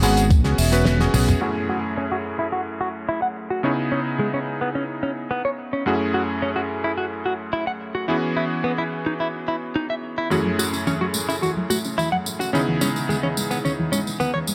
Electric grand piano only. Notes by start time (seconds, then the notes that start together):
0.02 B3 C#4 F#4 G#4
0.44 B3 C#4 F#4 G#4
0.72 B3 C#4 F#4 B4
1.00 B3 C#4 F#4 G#4
1.14 B3 C#4 F#4 G#4
1.41 F#2 A3 C#4 E4 G#4
3.63 C#3 B3 D#4 E4 G#4
5.86 F#2 A3 C#4 E4 G#4
8.08 E3 B3 C#4 F#4 G#4
10.30 F#2 A3 C#4 E4 G#4
12.53 C#3 B3 D#4 E4 G#4